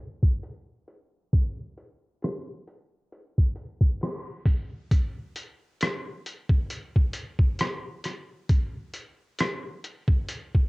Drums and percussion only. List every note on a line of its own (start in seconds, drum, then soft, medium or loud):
0.23 kick medium
0.43 closed hi-hat medium
0.88 closed hi-hat medium
1.33 kick loud
1.33 closed hi-hat medium
1.77 closed hi-hat medium
2.22 cross-stick medium
2.22 closed hi-hat medium
2.67 closed hi-hat medium
3.12 closed hi-hat medium
3.38 kick medium
3.56 closed hi-hat medium
3.81 kick medium
4.01 cross-stick medium
4.01 closed hi-hat medium
4.46 kick medium
4.46 closed hi-hat medium
4.91 kick loud
4.91 closed hi-hat medium
5.36 closed hi-hat medium
5.81 cross-stick loud
5.81 closed hi-hat medium
6.26 closed hi-hat medium
6.49 kick medium
6.70 closed hi-hat medium
6.96 kick medium
7.13 closed hi-hat medium
7.39 kick medium
7.59 cross-stick medium
7.59 closed hi-hat medium
8.04 cross-stick soft
8.04 closed hi-hat medium
8.49 kick loud
8.49 closed hi-hat loud
8.94 closed hi-hat medium
9.39 cross-stick loud
9.39 closed hi-hat medium
9.84 closed hi-hat medium
10.08 kick medium
10.28 closed hi-hat medium
10.55 kick medium